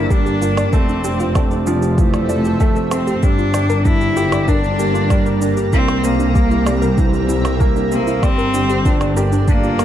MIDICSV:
0, 0, Header, 1, 8, 480
1, 0, Start_track
1, 0, Tempo, 625000
1, 559, Time_signature, 4, 2, 24, 8
1, 7563, End_track
2, 0, Start_track
2, 0, Title_t, "Analog synth pad"
2, 0, Program_c, 0, 89
2, 0, Note_on_c, 0, 55, 78
2, 0, Note_on_c, 0, 62, 83
2, 0, Note_on_c, 0, 70, 83
2, 0, Note_on_c, 0, 74, 79
2, 558, Note_off_c, 0, 70, 0
2, 560, Note_off_c, 0, 55, 0
2, 1004, Note_on_c, 0, 60, 93
2, 1222, Note_on_c, 0, 76, 72
2, 1327, Note_off_c, 0, 62, 0
2, 1329, Note_off_c, 0, 74, 0
2, 1414, Note_on_c, 0, 69, 92
2, 2479, Note_on_c, 0, 55, 87
2, 2482, Note_off_c, 0, 69, 0
2, 2947, Note_on_c, 0, 62, 98
2, 2981, Note_on_c, 0, 74, 79
2, 3086, Note_on_c, 0, 82, 91
2, 3249, Note_off_c, 0, 76, 0
2, 3250, Note_off_c, 0, 60, 0
2, 4689, Note_on_c, 0, 60, 89
2, 5029, Note_off_c, 0, 74, 0
2, 5170, Note_off_c, 0, 62, 0
2, 5264, Note_on_c, 0, 76, 78
2, 6591, Note_on_c, 0, 62, 93
2, 7088, Note_off_c, 0, 60, 0
2, 7088, Note_off_c, 0, 76, 0
2, 7186, Note_on_c, 0, 74, 102
2, 7563, Note_off_c, 0, 55, 0
2, 7563, Note_off_c, 0, 62, 0
2, 7563, Note_off_c, 0, 74, 0
2, 7563, Note_off_c, 0, 82, 0
2, 7563, End_track
3, 0, Start_track
3, 0, Title_t, "Synth arpeggio sound"
3, 0, Program_c, 1, 84
3, 78, Note_on_c, 1, 62, 84
3, 145, Note_off_c, 1, 62, 0
3, 198, Note_on_c, 1, 67, 81
3, 265, Note_off_c, 1, 67, 0
3, 318, Note_on_c, 1, 65, 78
3, 385, Note_off_c, 1, 65, 0
3, 439, Note_on_c, 1, 74, 78
3, 479, Note_off_c, 1, 74, 0
3, 559, Note_on_c, 1, 69, 104
3, 625, Note_off_c, 1, 69, 0
3, 679, Note_on_c, 1, 62, 77
3, 745, Note_off_c, 1, 62, 0
3, 801, Note_on_c, 1, 67, 84
3, 866, Note_off_c, 1, 67, 0
3, 921, Note_on_c, 1, 65, 76
3, 986, Note_off_c, 1, 65, 0
3, 1039, Note_on_c, 1, 74, 79
3, 1079, Note_off_c, 1, 74, 0
3, 1159, Note_on_c, 1, 69, 98
3, 1225, Note_off_c, 1, 69, 0
3, 1279, Note_on_c, 1, 62, 74
3, 1345, Note_off_c, 1, 62, 0
3, 1399, Note_on_c, 1, 67, 78
3, 1465, Note_off_c, 1, 67, 0
3, 1519, Note_on_c, 1, 65, 90
3, 1585, Note_off_c, 1, 65, 0
3, 1640, Note_on_c, 1, 74, 75
3, 1679, Note_off_c, 1, 74, 0
3, 1760, Note_on_c, 1, 74, 103
3, 1826, Note_off_c, 1, 74, 0
3, 1880, Note_on_c, 1, 67, 82
3, 1919, Note_off_c, 1, 67, 0
3, 2001, Note_on_c, 1, 67, 84
3, 2066, Note_off_c, 1, 67, 0
3, 2120, Note_on_c, 1, 69, 78
3, 2219, Note_off_c, 1, 69, 0
3, 2239, Note_on_c, 1, 69, 77
3, 2279, Note_off_c, 1, 69, 0
3, 2359, Note_on_c, 1, 67, 81
3, 2426, Note_off_c, 1, 67, 0
3, 2480, Note_on_c, 1, 67, 83
3, 2546, Note_off_c, 1, 67, 0
3, 2599, Note_on_c, 1, 65, 74
3, 2665, Note_off_c, 1, 65, 0
3, 2719, Note_on_c, 1, 74, 77
3, 2759, Note_off_c, 1, 74, 0
3, 2839, Note_on_c, 1, 70, 107
3, 2905, Note_off_c, 1, 70, 0
3, 2960, Note_on_c, 1, 62, 81
3, 3026, Note_off_c, 1, 62, 0
3, 3080, Note_on_c, 1, 67, 85
3, 3146, Note_off_c, 1, 67, 0
3, 3201, Note_on_c, 1, 65, 73
3, 3266, Note_off_c, 1, 65, 0
3, 3319, Note_on_c, 1, 74, 75
3, 3359, Note_off_c, 1, 74, 0
3, 3439, Note_on_c, 1, 70, 112
3, 3505, Note_off_c, 1, 70, 0
3, 3559, Note_on_c, 1, 62, 73
3, 3625, Note_off_c, 1, 62, 0
3, 3678, Note_on_c, 1, 67, 73
3, 3745, Note_off_c, 1, 67, 0
3, 3798, Note_on_c, 1, 65, 82
3, 3865, Note_off_c, 1, 65, 0
3, 3918, Note_on_c, 1, 74, 85
3, 3958, Note_off_c, 1, 74, 0
3, 4039, Note_on_c, 1, 70, 104
3, 4105, Note_off_c, 1, 70, 0
3, 4158, Note_on_c, 1, 62, 78
3, 4225, Note_off_c, 1, 62, 0
3, 4280, Note_on_c, 1, 67, 82
3, 4346, Note_off_c, 1, 67, 0
3, 4399, Note_on_c, 1, 64, 80
3, 4465, Note_off_c, 1, 64, 0
3, 4518, Note_on_c, 1, 74, 77
3, 4559, Note_off_c, 1, 74, 0
3, 4638, Note_on_c, 1, 70, 106
3, 4705, Note_off_c, 1, 70, 0
3, 4756, Note_on_c, 1, 62, 80
3, 4824, Note_off_c, 1, 62, 0
3, 4877, Note_on_c, 1, 67, 82
3, 4944, Note_off_c, 1, 67, 0
3, 4997, Note_on_c, 1, 64, 83
3, 5064, Note_off_c, 1, 64, 0
3, 5117, Note_on_c, 1, 74, 76
3, 5158, Note_off_c, 1, 74, 0
3, 5237, Note_on_c, 1, 70, 106
3, 5304, Note_off_c, 1, 70, 0
3, 5357, Note_on_c, 1, 62, 90
3, 5424, Note_off_c, 1, 62, 0
3, 5478, Note_on_c, 1, 67, 79
3, 5545, Note_off_c, 1, 67, 0
3, 5598, Note_on_c, 1, 64, 78
3, 5665, Note_off_c, 1, 64, 0
3, 5717, Note_on_c, 1, 74, 84
3, 5758, Note_off_c, 1, 74, 0
3, 5836, Note_on_c, 1, 70, 111
3, 5904, Note_off_c, 1, 70, 0
3, 5957, Note_on_c, 1, 62, 76
3, 6024, Note_off_c, 1, 62, 0
3, 6077, Note_on_c, 1, 67, 74
3, 6144, Note_off_c, 1, 67, 0
3, 6198, Note_on_c, 1, 64, 84
3, 6265, Note_off_c, 1, 64, 0
3, 6317, Note_on_c, 1, 74, 85
3, 6358, Note_off_c, 1, 74, 0
3, 6437, Note_on_c, 1, 70, 106
3, 6504, Note_off_c, 1, 70, 0
3, 6558, Note_on_c, 1, 62, 77
3, 6625, Note_off_c, 1, 62, 0
3, 6678, Note_on_c, 1, 67, 78
3, 6745, Note_off_c, 1, 67, 0
3, 6800, Note_on_c, 1, 65, 82
3, 6866, Note_off_c, 1, 65, 0
3, 6919, Note_on_c, 1, 74, 83
3, 6959, Note_off_c, 1, 74, 0
3, 7039, Note_on_c, 1, 70, 106
3, 7105, Note_off_c, 1, 70, 0
3, 7158, Note_on_c, 1, 62, 79
3, 7225, Note_off_c, 1, 62, 0
3, 7278, Note_on_c, 1, 67, 85
3, 7345, Note_off_c, 1, 67, 0
3, 7398, Note_on_c, 1, 65, 77
3, 7465, Note_off_c, 1, 65, 0
3, 7517, Note_on_c, 1, 74, 76
3, 7558, Note_off_c, 1, 74, 0
3, 7563, End_track
4, 0, Start_track
4, 0, Title_t, "Cello"
4, 0, Program_c, 2, 42
4, 0, Note_on_c, 2, 64, 109
4, 75, Note_on_c, 2, 62, 103
4, 86, Note_off_c, 2, 64, 0
4, 557, Note_on_c, 2, 60, 88
4, 568, Note_off_c, 2, 62, 0
4, 1278, Note_off_c, 2, 60, 0
4, 1518, Note_on_c, 2, 57, 87
4, 2245, Note_on_c, 2, 60, 92
4, 2256, Note_off_c, 2, 57, 0
4, 2481, Note_on_c, 2, 62, 106
4, 2493, Note_off_c, 2, 60, 0
4, 2965, Note_on_c, 2, 64, 116
4, 2977, Note_off_c, 2, 62, 0
4, 3443, Note_on_c, 2, 62, 99
4, 3455, Note_off_c, 2, 64, 0
4, 4161, Note_off_c, 2, 62, 0
4, 4399, Note_on_c, 2, 60, 121
4, 4640, Note_on_c, 2, 58, 110
4, 4651, Note_off_c, 2, 60, 0
4, 5359, Note_off_c, 2, 58, 0
4, 6077, Note_on_c, 2, 58, 103
4, 6320, Note_on_c, 2, 60, 123
4, 6332, Note_off_c, 2, 58, 0
4, 7040, Note_off_c, 2, 60, 0
4, 7278, Note_on_c, 2, 58, 115
4, 7563, Note_off_c, 2, 58, 0
4, 7563, End_track
5, 0, Start_track
5, 0, Title_t, "Felt piano"
5, 0, Program_c, 3, 0
5, 0, Control_c, 3, 64, 127
5, 0, Note_on_c, 3, 55, 78
5, 0, Note_on_c, 3, 58, 80
5, 0, Note_on_c, 3, 62, 85
5, 0, Note_on_c, 3, 67, 108
5, 82, Note_off_c, 3, 55, 0
5, 82, Note_on_c, 3, 55, 105
5, 309, Note_off_c, 3, 55, 0
5, 323, Note_off_c, 3, 58, 0
5, 323, Note_on_c, 3, 58, 72
5, 549, Note_off_c, 3, 58, 0
5, 562, Note_on_c, 3, 57, 88
5, 568, Control_c, 3, 64, 0
5, 572, Note_off_c, 3, 67, 0
5, 576, Note_off_c, 3, 62, 0
5, 701, Control_c, 3, 64, 127
5, 789, Note_off_c, 3, 57, 0
5, 802, Note_on_c, 3, 60, 78
5, 1029, Note_off_c, 3, 60, 0
5, 1043, Note_on_c, 3, 57, 78
5, 1269, Note_off_c, 3, 57, 0
5, 1283, Note_on_c, 3, 53, 102
5, 1509, Note_off_c, 3, 53, 0
5, 1523, Note_on_c, 3, 52, 82
5, 1658, Note_off_c, 3, 52, 0
5, 1762, Note_on_c, 3, 53, 76
5, 1988, Note_off_c, 3, 53, 0
5, 2000, Note_on_c, 3, 57, 106
5, 2228, Note_off_c, 3, 57, 0
5, 2239, Note_on_c, 3, 60, 75
5, 2467, Note_off_c, 3, 60, 0
5, 2479, Note_on_c, 3, 55, 82
5, 2490, Control_c, 3, 64, 0
5, 2627, Control_c, 3, 64, 127
5, 2707, Note_off_c, 3, 55, 0
5, 2718, Note_on_c, 3, 67, 73
5, 2947, Note_off_c, 3, 67, 0
5, 2958, Note_on_c, 3, 62, 74
5, 3186, Note_off_c, 3, 62, 0
5, 3199, Note_on_c, 3, 67, 113
5, 3427, Note_off_c, 3, 67, 0
5, 3440, Note_on_c, 3, 62, 83
5, 3577, Note_off_c, 3, 62, 0
5, 3680, Note_on_c, 3, 58, 77
5, 3908, Note_off_c, 3, 58, 0
5, 3920, Note_on_c, 3, 55, 100
5, 4147, Note_off_c, 3, 55, 0
5, 4161, Note_on_c, 3, 58, 74
5, 4388, Note_off_c, 3, 58, 0
5, 4401, Note_on_c, 3, 58, 83
5, 4410, Control_c, 3, 64, 0
5, 4534, Control_c, 3, 64, 127
5, 4628, Note_off_c, 3, 58, 0
5, 4642, Note_on_c, 3, 60, 77
5, 4869, Note_off_c, 3, 60, 0
5, 4881, Note_on_c, 3, 58, 74
5, 5108, Note_off_c, 3, 58, 0
5, 5123, Note_on_c, 3, 55, 101
5, 5349, Note_off_c, 3, 55, 0
5, 5360, Note_on_c, 3, 52, 85
5, 5496, Note_off_c, 3, 52, 0
5, 5602, Note_on_c, 3, 55, 78
5, 5829, Note_off_c, 3, 55, 0
5, 5842, Note_on_c, 3, 58, 102
5, 6068, Note_off_c, 3, 58, 0
5, 6080, Note_on_c, 3, 60, 76
5, 6308, Note_off_c, 3, 60, 0
5, 6322, Note_on_c, 3, 55, 82
5, 6328, Control_c, 3, 64, 0
5, 6475, Control_c, 3, 64, 127
5, 6549, Note_off_c, 3, 55, 0
5, 6564, Note_on_c, 3, 67, 79
5, 6789, Note_off_c, 3, 67, 0
5, 6801, Note_on_c, 3, 62, 77
5, 7028, Note_off_c, 3, 62, 0
5, 7042, Note_on_c, 3, 67, 108
5, 7269, Note_off_c, 3, 67, 0
5, 7284, Note_on_c, 3, 62, 88
5, 7418, Note_off_c, 3, 62, 0
5, 7520, Note_on_c, 3, 58, 79
5, 7563, Note_off_c, 3, 58, 0
5, 7563, End_track
6, 0, Start_track
6, 0, Title_t, "Double bass section"
6, 0, Program_c, 4, 48
6, 0, Note_on_c, 4, 31, 96
6, 536, Note_off_c, 4, 31, 0
6, 560, Note_on_c, 4, 29, 96
6, 2456, Note_off_c, 4, 29, 0
6, 2480, Note_on_c, 4, 31, 96
6, 4376, Note_off_c, 4, 31, 0
6, 4399, Note_on_c, 4, 36, 103
6, 6295, Note_off_c, 4, 36, 0
6, 6320, Note_on_c, 4, 31, 99
6, 7563, Note_off_c, 4, 31, 0
6, 7563, End_track
7, 0, Start_track
7, 0, Title_t, "Percussion blips"
7, 441, Note_on_c, 9, 77, 67
7, 518, Note_off_c, 9, 77, 0
7, 1039, Note_on_c, 9, 77, 65
7, 1116, Note_off_c, 9, 77, 0
7, 1641, Note_on_c, 9, 77, 70
7, 1718, Note_off_c, 9, 77, 0
7, 2238, Note_on_c, 9, 77, 70
7, 2315, Note_off_c, 9, 77, 0
7, 2718, Note_on_c, 9, 77, 66
7, 2795, Note_off_c, 9, 77, 0
7, 3320, Note_on_c, 9, 77, 64
7, 3397, Note_off_c, 9, 77, 0
7, 3920, Note_on_c, 9, 77, 63
7, 3996, Note_off_c, 9, 77, 0
7, 4519, Note_on_c, 9, 77, 62
7, 4596, Note_off_c, 9, 77, 0
7, 5119, Note_on_c, 9, 77, 65
7, 5195, Note_off_c, 9, 77, 0
7, 5721, Note_on_c, 9, 77, 59
7, 5798, Note_off_c, 9, 77, 0
7, 6321, Note_on_c, 9, 77, 62
7, 6397, Note_off_c, 9, 77, 0
7, 6919, Note_on_c, 9, 77, 68
7, 6996, Note_off_c, 9, 77, 0
7, 7520, Note_on_c, 9, 77, 64
7, 7563, Note_off_c, 9, 77, 0
7, 7563, End_track
8, 0, Start_track
8, 0, Title_t, "Drums"
8, 80, Note_on_c, 9, 36, 113
8, 81, Note_on_c, 9, 82, 43
8, 157, Note_off_c, 9, 36, 0
8, 158, Note_off_c, 9, 82, 0
8, 202, Note_on_c, 9, 82, 24
8, 279, Note_off_c, 9, 82, 0
8, 321, Note_on_c, 9, 82, 81
8, 398, Note_off_c, 9, 82, 0
8, 441, Note_on_c, 9, 82, 35
8, 518, Note_off_c, 9, 82, 0
8, 559, Note_on_c, 9, 82, 44
8, 560, Note_on_c, 9, 36, 109
8, 636, Note_off_c, 9, 82, 0
8, 637, Note_off_c, 9, 36, 0
8, 682, Note_on_c, 9, 82, 22
8, 758, Note_off_c, 9, 82, 0
8, 799, Note_on_c, 9, 82, 82
8, 876, Note_off_c, 9, 82, 0
8, 920, Note_on_c, 9, 82, 31
8, 997, Note_off_c, 9, 82, 0
8, 1039, Note_on_c, 9, 82, 46
8, 1040, Note_on_c, 9, 36, 111
8, 1116, Note_off_c, 9, 82, 0
8, 1117, Note_off_c, 9, 36, 0
8, 1160, Note_on_c, 9, 82, 22
8, 1236, Note_off_c, 9, 82, 0
8, 1280, Note_on_c, 9, 82, 81
8, 1356, Note_off_c, 9, 82, 0
8, 1400, Note_on_c, 9, 82, 35
8, 1477, Note_off_c, 9, 82, 0
8, 1520, Note_on_c, 9, 36, 112
8, 1521, Note_on_c, 9, 82, 42
8, 1597, Note_off_c, 9, 36, 0
8, 1598, Note_off_c, 9, 82, 0
8, 1641, Note_on_c, 9, 82, 23
8, 1718, Note_off_c, 9, 82, 0
8, 1759, Note_on_c, 9, 82, 74
8, 1836, Note_off_c, 9, 82, 0
8, 1879, Note_on_c, 9, 82, 31
8, 1956, Note_off_c, 9, 82, 0
8, 1999, Note_on_c, 9, 82, 43
8, 2000, Note_on_c, 9, 36, 106
8, 2075, Note_off_c, 9, 82, 0
8, 2077, Note_off_c, 9, 36, 0
8, 2119, Note_on_c, 9, 82, 23
8, 2196, Note_off_c, 9, 82, 0
8, 2238, Note_on_c, 9, 82, 79
8, 2315, Note_off_c, 9, 82, 0
8, 2359, Note_on_c, 9, 82, 34
8, 2436, Note_off_c, 9, 82, 0
8, 2479, Note_on_c, 9, 82, 42
8, 2480, Note_on_c, 9, 36, 107
8, 2556, Note_off_c, 9, 82, 0
8, 2557, Note_off_c, 9, 36, 0
8, 2599, Note_on_c, 9, 82, 19
8, 2676, Note_off_c, 9, 82, 0
8, 2718, Note_on_c, 9, 82, 81
8, 2795, Note_off_c, 9, 82, 0
8, 2839, Note_on_c, 9, 82, 32
8, 2916, Note_off_c, 9, 82, 0
8, 2959, Note_on_c, 9, 82, 44
8, 2960, Note_on_c, 9, 36, 104
8, 3035, Note_off_c, 9, 82, 0
8, 3037, Note_off_c, 9, 36, 0
8, 3079, Note_on_c, 9, 82, 22
8, 3156, Note_off_c, 9, 82, 0
8, 3199, Note_on_c, 9, 82, 69
8, 3276, Note_off_c, 9, 82, 0
8, 3320, Note_on_c, 9, 82, 33
8, 3397, Note_off_c, 9, 82, 0
8, 3440, Note_on_c, 9, 36, 104
8, 3440, Note_on_c, 9, 82, 43
8, 3517, Note_off_c, 9, 36, 0
8, 3517, Note_off_c, 9, 82, 0
8, 3562, Note_on_c, 9, 82, 22
8, 3638, Note_off_c, 9, 82, 0
8, 3681, Note_on_c, 9, 82, 69
8, 3758, Note_off_c, 9, 82, 0
8, 3801, Note_on_c, 9, 82, 29
8, 3877, Note_off_c, 9, 82, 0
8, 3920, Note_on_c, 9, 36, 106
8, 3920, Note_on_c, 9, 82, 40
8, 3996, Note_off_c, 9, 82, 0
8, 3997, Note_off_c, 9, 36, 0
8, 4039, Note_on_c, 9, 82, 22
8, 4116, Note_off_c, 9, 82, 0
8, 4159, Note_on_c, 9, 82, 75
8, 4236, Note_off_c, 9, 82, 0
8, 4278, Note_on_c, 9, 82, 32
8, 4354, Note_off_c, 9, 82, 0
8, 4398, Note_on_c, 9, 82, 41
8, 4400, Note_on_c, 9, 36, 98
8, 4474, Note_off_c, 9, 82, 0
8, 4477, Note_off_c, 9, 36, 0
8, 4519, Note_on_c, 9, 82, 18
8, 4596, Note_off_c, 9, 82, 0
8, 4638, Note_on_c, 9, 82, 75
8, 4715, Note_off_c, 9, 82, 0
8, 4759, Note_on_c, 9, 82, 31
8, 4836, Note_off_c, 9, 82, 0
8, 4880, Note_on_c, 9, 36, 100
8, 4880, Note_on_c, 9, 82, 45
8, 4957, Note_off_c, 9, 36, 0
8, 4957, Note_off_c, 9, 82, 0
8, 4999, Note_on_c, 9, 82, 20
8, 5076, Note_off_c, 9, 82, 0
8, 5119, Note_on_c, 9, 82, 66
8, 5195, Note_off_c, 9, 82, 0
8, 5239, Note_on_c, 9, 82, 33
8, 5316, Note_off_c, 9, 82, 0
8, 5359, Note_on_c, 9, 82, 44
8, 5361, Note_on_c, 9, 36, 111
8, 5436, Note_off_c, 9, 82, 0
8, 5437, Note_off_c, 9, 36, 0
8, 5480, Note_on_c, 9, 82, 21
8, 5557, Note_off_c, 9, 82, 0
8, 5600, Note_on_c, 9, 82, 69
8, 5676, Note_off_c, 9, 82, 0
8, 5721, Note_on_c, 9, 82, 28
8, 5798, Note_off_c, 9, 82, 0
8, 5840, Note_on_c, 9, 36, 100
8, 5840, Note_on_c, 9, 82, 43
8, 5917, Note_off_c, 9, 36, 0
8, 5917, Note_off_c, 9, 82, 0
8, 5961, Note_on_c, 9, 82, 22
8, 6037, Note_off_c, 9, 82, 0
8, 6080, Note_on_c, 9, 82, 79
8, 6157, Note_off_c, 9, 82, 0
8, 6200, Note_on_c, 9, 82, 33
8, 6277, Note_off_c, 9, 82, 0
8, 6320, Note_on_c, 9, 36, 102
8, 6321, Note_on_c, 9, 82, 41
8, 6397, Note_off_c, 9, 36, 0
8, 6397, Note_off_c, 9, 82, 0
8, 6441, Note_on_c, 9, 82, 20
8, 6518, Note_off_c, 9, 82, 0
8, 6558, Note_on_c, 9, 82, 73
8, 6635, Note_off_c, 9, 82, 0
8, 6678, Note_on_c, 9, 82, 30
8, 6755, Note_off_c, 9, 82, 0
8, 6800, Note_on_c, 9, 36, 103
8, 6800, Note_on_c, 9, 82, 41
8, 6877, Note_off_c, 9, 36, 0
8, 6877, Note_off_c, 9, 82, 0
8, 6919, Note_on_c, 9, 82, 21
8, 6996, Note_off_c, 9, 82, 0
8, 7040, Note_on_c, 9, 82, 70
8, 7117, Note_off_c, 9, 82, 0
8, 7160, Note_on_c, 9, 82, 33
8, 7237, Note_off_c, 9, 82, 0
8, 7278, Note_on_c, 9, 82, 42
8, 7280, Note_on_c, 9, 36, 108
8, 7355, Note_off_c, 9, 82, 0
8, 7356, Note_off_c, 9, 36, 0
8, 7400, Note_on_c, 9, 82, 22
8, 7477, Note_off_c, 9, 82, 0
8, 7520, Note_on_c, 9, 82, 68
8, 7563, Note_off_c, 9, 82, 0
8, 7563, End_track
0, 0, End_of_file